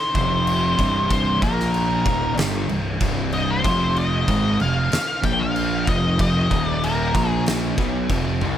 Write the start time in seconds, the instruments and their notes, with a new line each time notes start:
Already playing: lead electric guitar C5
0.15 fingered electric bass F1, distorted electric guitar F2 C3 F3, kick, crash
0.47 crash
0.78 fingered electric bass C1, distorted electric guitar C2 G2 C3, kick, crash
1.11 lead electric guitar C5, kick, crash
1.42 fingered electric bass A#1, distorted electric guitar A#2 F3 A#3, lead electric guitar A#4, kick, crash
1.60 snare
1.74 crash
2.06 fingered electric bass D#1, distorted electric guitar D#2 A#2 D#3, kick, crash
2.37 fingered electric bass G1, distorted electric guitar G2 D3 G3, snare, crash
2.69 fingered electric bass C1, distorted electric guitar C2 G2, crash
3.00 fingered electric bass C1, distorted electric guitar C2 G2 C3, kick, crash
3.32 lead electric guitar D#5, crash
3.50 lead electric guitar C5
3.64 fingered electric bass F1, distorted electric guitar F2 C3 F3, kick, crash
3.96 lead electric guitar D#5, crash
4.28 fingered electric bass G#1, distorted electric guitar G#2 D#3 G#3, kick, crash
4.60 fingered electric bass F1, distorted electric guitar F2 C3, lead electric guitar F5, crash
4.92 muted distorted electric guitar stroke, muted fingered electric bass stroke, snare, crash
5.23 fingered electric bass A#1, distorted electric guitar A#2 F3 A#3, lead electric guitar G5, kick, crash
5.40 lead electric guitar F5
5.56 crash
5.87 fingered electric bass F1, distorted electric guitar F2 C3 F3, lead electric guitar D#5, kick, crash
6.19 lead electric guitar D#5, kick, crash
6.50 fingered electric bass D#1, distorted electric guitar D#2 A#2 D#3, kick, crash
6.67 lead electric guitar D5
6.83 lead electric guitar A#4, crash
7.15 fingered electric bass A#1, distorted electric guitar A#2 F3 A#3, kick, crash
7.29 lead electric guitar G#4
7.46 snare, crash
7.78 fingered electric bass B1, distorted electric guitar B2 F#3 B3, kick, crash
8.09 fingered electric bass F1, distorted electric guitar F2 C3 F3, kick, crash
8.41 fingered electric bass C2, distorted electric guitar C3 G3 C4, high tom